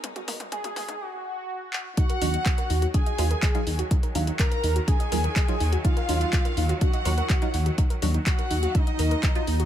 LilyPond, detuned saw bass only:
\new Staff \with { instrumentName = "Detuned saw bass" } { \clef bass \time 4/4 \key ees \minor \tempo 4 = 124 r8 b,,8 r8 b,,8 r2 | r8 ees,8 r8 ees,8 r8 ees,8 r8 ees,8 | r8 ees,8 r8 ees,8 r8 ees,8 r8 ees,8 | r8 ees,8 r8 ees,8 r8 ees,8 r8 ees,8 |
r8 ees,8 r8 ees,8 r8 ees,8 r8 ees,8 | }